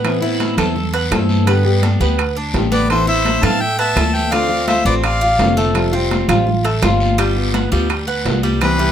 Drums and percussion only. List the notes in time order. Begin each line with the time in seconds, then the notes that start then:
0.05 high conga, high timbale, long guiro, claves
0.23 high conga
0.40 high conga, high timbale, low timbale, short guiro
0.58 high conga, low conga, high timbale, short guiro, claves
0.76 high conga, low conga, long guiro
0.94 high conga, high timbale
1.12 high conga, high timbale, low timbale, short guiro, claves
1.29 high conga, short guiro
1.47 high conga, high timbale, long guiro, claves
1.83 high conga, high timbale, low timbale, short guiro
2.01 high conga, short guiro
2.18 high conga, high timbale, long guiro, claves
2.36 high conga
2.54 high conga, high timbale, low timbale, short guiro
2.72 high conga, short guiro
2.90 high conga, high timbale, long guiro, claves
3.07 high conga
3.25 high conga, high timbale, low timbale, short guiro
3.43 high conga, low conga, high timbale, short guiro, claves
3.61 high conga, long guiro
3.79 high conga, high timbale
3.96 high conga, high timbale, low timbale, short guiro, claves
4.14 high conga, short guiro
4.32 high conga, high timbale, long guiro, claves
4.50 high conga
4.68 high conga, high timbale, low timbale, short guiro
4.85 high conga, short guiro
5.03 high conga, high timbale, long guiro, claves
5.22 high conga
5.39 high conga, high timbale, low timbale, short guiro
5.57 high conga, short guiro
5.75 high conga, high timbale, long guiro, claves
5.94 high conga
6.11 high conga, high timbale, low timbale, short guiro
6.29 high conga, low conga, high timbale, short guiro, claves
6.47 high conga, low conga, long guiro
6.65 high conga, high timbale
6.83 high conga, high timbale, low timbale, short guiro, claves
7.00 high conga, short guiro
7.18 high timbale, long guiro, claves
7.37 high conga
7.54 high conga, high timbale, low timbale, short guiro
7.72 high conga, short guiro
7.90 high conga, high timbale, long guiro, claves
8.08 high conga
8.25 high conga, high timbale, low timbale, short guiro
8.43 high conga, short guiro
8.61 high conga, high timbale, long guiro, claves